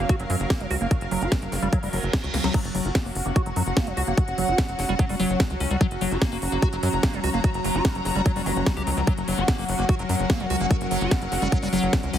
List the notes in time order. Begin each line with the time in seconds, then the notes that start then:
Already playing: F#3 C#4 F#4 A#4 F5
0.09 F#4, kick, closed hi-hat
0.20 F#1 F#3, closed hi-hat
0.30 F#2 F#3, open hi-hat
0.40 F#1, closed hi-hat
0.50 A#3, kick, snare, closed hi-hat
0.60 F#1 F#3, closed hi-hat
0.71 C#2 F#4, open hi-hat
0.81 F#1 A#3, closed hi-hat
0.91 F#4, kick, closed hi-hat
1.01 F#1, closed hi-hat
1.11 F#1 F#3, open hi-hat
1.22 F#1 F#4, closed hi-hat
1.32 G3, kick, snare, closed hi-hat
1.42 F#1 F#3, closed hi-hat
1.52 F#1, snare, open hi-hat
1.62 F#1 G3, closed hi-hat
1.73 F#3, kick, closed hi-hat, reverse cymbal
1.83 F#1 G3, open hi-hat
1.93 F#1 F#3, open hi-hat
2.03 F#1, closed hi-hat
2.13 F3, kick, snare, closed hi-hat
2.24 C#2 F#4, closed hi-hat
2.34 C#2 A#3, snare, open hi-hat
2.44 C#2 F#3, snare
2.54 F#3 C#4 F#4, kick, closed hi-hat, crash
2.62 F#1 F#4, closed hi-hat
2.75 F#1 F#3, open hi-hat
2.84 F#1 G4 F#5, closed hi-hat
2.95 A#3, kick, snare, closed hi-hat
3.05 F#1 A#3, open hi-hat
3.15 F#1, open hi-hat
3.26 F#1 A#3, closed hi-hat
3.36 F#4, kick, closed hi-hat
3.46 F#1 F#3, closed hi-hat
3.56 F#2 F#3, open hi-hat
3.66 F#1, closed hi-hat
3.77 A#3, kick, snare, closed hi-hat
3.87 F#1 F#3, closed hi-hat
3.97 C#2 F#4, open hi-hat
4.07 F#1 A#3, closed hi-hat
4.17 F#4, kick, closed hi-hat
4.28 F#1, closed hi-hat
4.38 F#1 F#3, open hi-hat
4.48 F#1 F#4, closed hi-hat
4.58 G3, kick, snare, closed hi-hat
4.69 F#1 F#3, closed hi-hat
4.79 F#1, snare, open hi-hat
4.89 F#1 G3, closed hi-hat
4.99 F#3, kick, closed hi-hat
5.09 F#1 G3, open hi-hat
5.20 F#1 F#3, open hi-hat
5.30 F#1, closed hi-hat
5.40 G3, kick, snare, closed hi-hat
5.50 C#2 F#3, closed hi-hat
5.60 C#2 C#4, open hi-hat
5.71 C#2 G3, closed hi-hat
5.81 F#3, kick, closed hi-hat
5.91 F#1, closed hi-hat
6.01 F#1 F#3, open hi-hat
6.11 F#1 G4 A#5, closed hi-hat
6.22 A#3, kick, snare, closed hi-hat
6.32 F#1 A#3, open hi-hat
6.42 F#1, open hi-hat
6.52 F#1 A#3, closed hi-hat
6.62 F#4, kick, closed hi-hat
6.73 F#1 F#3, closed hi-hat
6.83 F#2 F#3, open hi-hat
6.93 F#1, closed hi-hat
7.03 A#3, kick, snare, closed hi-hat
7.13 F#1 F#3, closed hi-hat
7.24 C#2 F#4, open hi-hat
7.34 F#1 A#3
7.44 F#4, kick, closed hi-hat
7.54 F#1, closed hi-hat
7.64 F#1 F#3, open hi-hat
7.75 F#1 F#4, closed hi-hat
7.85 G3, kick, snare, closed hi-hat
7.95 F#1 F#3, closed hi-hat
8.05 F#1, snare, open hi-hat
8.15 F#1 G3, closed hi-hat
8.26 F#3, kick, closed hi-hat
8.36 F#1 G3, open hi-hat
8.46 F#1 F#3, open hi-hat, zap
8.56 F#1, closed hi-hat
8.66 G3, kick, snare, closed hi-hat
8.77 C#2 G4, closed hi-hat
8.87 C#2 F#3, open hi-hat
8.97 C#2 F#3, closed hi-hat
9.07 F#3 A#4, kick, closed hi-hat
9.18 F#1, closed hi-hat
9.28 F#1 F#3, open hi-hat
9.37 F#1 G4 F#5
9.48 A#3, kick, snare, closed hi-hat
9.58 F#1 A#3, open hi-hat
9.69 F#1, open hi-hat
9.79 F#1 A#3, closed hi-hat
9.89 F#4, kick, closed hi-hat
9.99 F#1 F#3, closed hi-hat
10.09 F#2 F#3, open hi-hat
10.20 F#1, closed hi-hat
10.30 A#3, kick, snare, closed hi-hat
10.40 F#1 F#3, closed hi-hat
10.50 C#2 F#4, open hi-hat
10.60 F#1 A#3, closed hi-hat
10.71 F#4, kick, closed hi-hat
10.81 F#1, closed hi-hat
10.91 F#1 F#3, open hi-hat
11.01 F#1 F#4, closed hi-hat
11.11 G3, kick, snare, closed hi-hat
11.22 F#1 F#3, closed hi-hat
11.32 F#1, snare, open hi-hat
11.42 F#1 G3, closed hi-hat
11.52 F#3, kick, closed hi-hat
11.62 F#1 G3, open hi-hat
11.73 F#1 F#3, open hi-hat
11.83 F#1, closed hi-hat
11.93 G3, kick, snare, closed hi-hat
12.03 C#2 F#3, closed hi-hat
12.13 C#2 C#4, open hi-hat